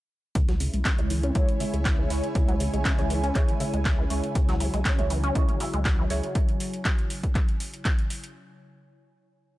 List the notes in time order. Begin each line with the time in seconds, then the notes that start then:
0.35 C#2 C#3 G#3 E4, kick, closed hi-hat
0.49 F#3, snare, closed hi-hat
0.53 C#5
0.60 C#3, closed hi-hat, open hi-hat
0.73 B1 G#3, closed hi-hat
0.78 G#5
0.85 C#4, kick, snare, clap, closed hi-hat
0.98 C#2 C#3 G#3 E4 C#5, closed hi-hat
1.10 E3, closed hi-hat, open hi-hat
1.23 C#4, closed hi-hat
1.35 C#2 G#3 E4 C#5, kick, closed hi-hat
1.48 C#3, closed hi-hat
1.60 C#3 G#3 E4 E5, closed hi-hat, open hi-hat
1.73 C#2 G#3, closed hi-hat
1.85 kick, snare, clap, closed hi-hat
1.98 E3
2.10 C#2 G#3 E4 C#5, snare, closed hi-hat, open hi-hat
2.24 closed hi-hat
2.35 C#2 C#3, kick, closed hi-hat
2.48 F#3, closed hi-hat
2.60 C#3, closed hi-hat, open hi-hat
2.73 B1 G#3, closed hi-hat
2.85 C#4, kick, snare, clap, closed hi-hat
2.98 C#2 C#3 G#3 E4 C#5, closed hi-hat
3.10 E3, closed hi-hat, open hi-hat
3.23 C#4, closed hi-hat
3.35 C#2 G#3 E4 C#5, kick, clap, closed hi-hat
3.48 C#3, closed hi-hat
3.60 C#3 G#3 E4 E5, closed hi-hat, open hi-hat
3.74 C#2 G#3, closed hi-hat
3.85 kick, snare, clap, closed hi-hat
3.98 E3
4.10 C#2 G#3 E4 C#5, closed hi-hat, open hi-hat
4.24 closed hi-hat
4.35 C#2 C#3 F#3, kick, closed hi-hat
4.49 F#3, snare, closed hi-hat
4.60 C#3, closed hi-hat, open hi-hat
4.73 B1 G#3, closed hi-hat
4.85 C#4, kick, snare, clap, closed hi-hat
4.98 C#2 C#3 G#3 E4 C#5, closed hi-hat
5.10 E3, closed hi-hat, open hi-hat
5.24 C#4, closed hi-hat
5.35 C#2 G#3 E4 C#5, kick, closed hi-hat
5.49 C#3, closed hi-hat
5.60 C#3 G#3 E4 E5, closed hi-hat, open hi-hat
5.74 C#2 G#3, closed hi-hat
5.85 kick, snare, clap, closed hi-hat
5.99 E3
6.10 C#2 G#3 E4 C#5, snare, closed hi-hat, open hi-hat
6.23 closed hi-hat
6.35 kick, closed hi-hat
6.49 closed hi-hat
6.60 open hi-hat
6.73 closed hi-hat
6.85 kick, clap, closed hi-hat
6.99 closed hi-hat
7.10 open hi-hat
7.23 kick, closed hi-hat
7.35 kick, clap, closed hi-hat
7.49 closed hi-hat
7.60 open hi-hat
7.74 closed hi-hat
7.85 kick, clap, closed hi-hat
7.99 closed hi-hat
8.10 open hi-hat
8.24 closed hi-hat